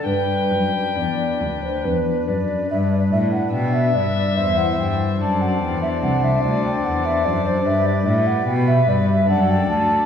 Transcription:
<<
  \new Staff \with { instrumentName = "Flute" } { \time 3/4 \key g \major \tempo 4 = 73 b'4 d''8. c''16 b'8 d''8 | e''16 d''16 e''16 fis''16 g''16 e''16 d''8 e''16 fis''16 g''8 | a''16 fis''16 g''16 e''16 fis''16 e''16 d''16 g''16 fis''16 e''16 d''16 c''16 | e''16 d''16 e''16 fis''16 g''16 e''16 d''16 e''16 fis''16 g''16 a''8 | }
  \new Staff \with { instrumentName = "Violin" } { \time 3/4 \key g \major g''2 r4 | r4 e''2 | d''2.~ | d''4 b'4 a'4 | }
  \new Staff \with { instrumentName = "Pipe organ" } { \time 3/4 \key g \major <d' b'>2. | <d' b'>2 <e' c''>4 | <d' a' c''>2. | <d' g' b'>2 <d' a' d''>4 | }
  \new Staff \with { instrumentName = "Pipe organ" } { \clef bass \time 3/4 \key g \major g,8 fis,8 e,8 d,8 e,8 fis,8 | g,8 a,8 b,8 g,8 e,8 g,8 | fis,8 e,8 c,8 d,8 e,8 fis,8 | g,8 a,8 b,8 g,8 fis,8 d,8 | }
  \new Staff \with { instrumentName = "Cello" } { \clef bass \time 3/4 \key g \major g,8 fis,8 e,8 d,8 e,8 fis,8 | g,8 a,8 b,8 g,8 e,8 g,8 | fis,8 e,8 c,8 d,8 e,8 fis,8 | g,8 a,8 b,8 g,8 fis,8 d,8 | }
>>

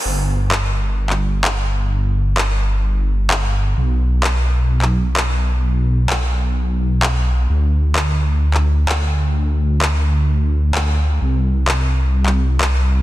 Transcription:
<<
  \new Staff \with { instrumentName = "Detuned saw bass" } { \clef bass \time 4/4 \key g \major \tempo 4 = 129 g,,1~ | g,,1 | b,,1~ | b,,1 |
d,1~ | d,1 | c,1 | }
  \new DrumStaff \with { instrumentName = "Drums" } \drummode { \time 4/4 r4 hc4 r16 hc8. hc4 | r4 hc4 r4 hc4 | r4 hc4 r16 hc8. hc4 | r4 hc4 r4 hc4 |
r4 hc4 r16 hc8. hc4 | r4 hc4 r4 hc4 | r4 hc4 r16 hc8. hc4 | }
>>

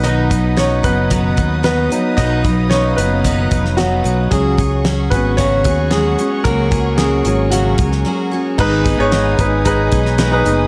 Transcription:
<<
  \new Staff \with { instrumentName = "String section" } { \time 4/4 \key b \lydian \tempo 4 = 112 << { <b' dis'' dis'''>1~ | <b' dis'' dis'''>1 | <gis' cis'' cis'''>1~ | <gis' cis'' cis'''>1 |
<b' dis'' dis'''>1 | } \\ { fis''2.~ fis''8 eis''8~ | eis''1 | fis''1~ | fis''1 |
gis''1 | } >> }
  \new Staff \with { instrumentName = "Grand piano" } { \time 4/4 \key b \lydian <dis' dis''>4 <cis' cis''>8 <b b'>4 r8 <b b'>4 | <dis' dis''>4 <cis' cis''>8 <b b'>4 r8 <fis fis'>4 | gis'4. <b b'>8 <cis' cis''>4 <gis gis'>4 | <ais ais'>4 <gis gis'>4 <fis fis'>4. r8 |
<dis' gis' b'>8 r16 <dis' gis' cis''>8 r16 <dis' gis' b'>8 <dis' gis' b'>4 r16 <dis' gis' b'>8 r16 | }
  \new Staff \with { instrumentName = "Grand piano" } { \clef bass \time 4/4 \key b \lydian <fis b dis'>2.~ <fis b dis'>8 <fis b dis'>8 | r1 | <fis gis cis'>8 r2. r8 | r4. <fis gis cis'>4. r4 |
gis,4. r2 r8 | }
  \new Staff \with { instrumentName = "Steel-string acoustic guitar" } { \time 4/4 \key b \lydian <b, dis fis b dis' b'>8 <fis b dis' b'>8 <fis b dis' b'>8 <fis b dis' b'>8 <b, dis fis b dis' b'>8 <fis b dis' b'>8 <fis b dis' b'>8 <fis b dis' b'>8 | <b, dis fis b dis' b'>8 <fis b dis' b'>8 <fis b dis' b'>8 <fis b dis' b'>8 <b, dis fis b dis' b'>8 <fis b dis' b'>8 <fis b dis' b'>8 <fis b dis' b'>8 | <cis fis cis' fis' gis'>8 <cis' fis' gis'>8 <fis cis' fis' gis'>8 <cis' fis' gis'>8 <cis fis cis' fis' gis'>8 <cis' fis' gis'>8 <fis cis' fis' gis'>8 <cis' fis' gis'>8 | <cis fis cis' fis' gis'>8 <cis' fis' gis'>8 <fis cis' fis' gis'>8 <cis' fis' gis'>8 <cis fis cis' fis' gis'>8 <cis' fis' gis'>8 <fis cis' fis' gis'>8 <cis' fis' gis'>8 |
<gis, dis gis b dis' gis'>8 <gis b dis' gis'>8 <gis, dis gis b dis' gis'>8 <gis b dis' gis'>8 <gis b dis' gis'>8 <gis b dis' gis'>8 <gis, dis gis b dis' gis'>8 <gis b dis' gis'>8 | }
  \new Staff \with { instrumentName = "Fingered electric bass" } { \clef bass \time 4/4 \key b \lydian b,,4. fis,,4 dis,4 r8 | b,,4. fis,,4 eis,,4 b,,8 | cis,4. gis,,4 dis,4 r8 | cis,4. gis,,4 cis,8 r4 |
gis,,8. gis,,8. gis,,4 b,,4 fis,,8 | }
  \new DrumStaff \with { instrumentName = "Drums" } \drummode { \time 4/4 hh8 <hh bd>8 <hh sn>8 <hh bd>8 <hh bd>8 <hh bd>8 <hh sn>8 hh8 | <hh bd>8 <hh bd>8 <hh sn>8 hh8 <hh bd>8 <hh bd>16 sn16 <hh sn>8 hh8 | <hh bd>8 <hh bd>8 <hh sn>8 <hh bd>8 <hh bd>8 <hh bd>8 <hh sn>8 hh8 | <hh bd>8 <hh bd>8 <hh sn>8 hh8 hh8 <hh bd>16 sn16 r4 |
<cymc bd>8 <hh bd>8 <hh sn>8 <hh bd>8 <hh bd>8 <hh bd>16 sn16 <hh sn>8 hh8 | }
>>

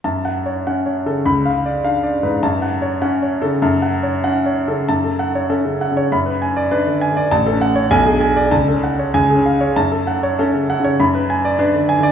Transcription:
<<
  \new Staff \with { instrumentName = "Grand piano" } { \time 2/4 \key fis \minor \tempo 4 = 99 << { a''8 r4. | b''8 r4. | a''8 r4. | r2 |
a''8 r4. | b''8 r4. | a''8 r8 gis''8 r8 | a''8 r8 gis''8 r8 |
a''8 r4. | b''8 r4. | } \\ { \tuplet 3/2 { r8 fis''8 cis''8 fis''8 cis''8 a'8 } | \tuplet 3/2 { r8 eis''8 d''8 eis''8 d''8 b'8 } | \tuplet 3/2 { r8 fis''8 cis''8 fis''8 cis''8 a'8 } | \tuplet 3/2 { a''8 fis''8 cis''8 fis''8 cis''8 a'8 } |
r16 a'16 fis''16 cis''16 a'16 cis16 fis''16 cis''16 | r16 b'16 gis''16 d''16 b'16 d16 gis''16 d''16 | r16 a'16 fis''16 cis''16 r16 gis'16 gis''16 d''16 | r16 a'16 fis''16 cis''16 r16 gis'16 eis''16 cis''16 |
r16 a'16 fis''16 cis''16 a'16 cis16 fis''16 cis''16 | r16 b'16 gis''16 d''16 b'16 d16 gis''16 d''16 | } >> }
  \new Staff \with { instrumentName = "Grand piano" } { \clef bass \time 2/4 \key fis \minor fis,4 \tuplet 3/2 { cis'4 cis8 } | cis,4 \tuplet 3/2 { d'4 gis,8 } | fis,4 \tuplet 3/2 { cis'4 cis8 } | fis,4 \tuplet 3/2 { cis'4 cis8 } |
fis,4 \tuplet 3/2 { cis'4 cis8 } | fis,4 \tuplet 3/2 { d'4 d8 } | \tuplet 3/2 { a,,8 cis'4 b,,8 d'4 } | \tuplet 3/2 { cis,8 cis'4 cis,8 cis'4 } |
fis,4 \tuplet 3/2 { cis'4 cis8 } | fis,4 \tuplet 3/2 { d'4 d8 } | }
>>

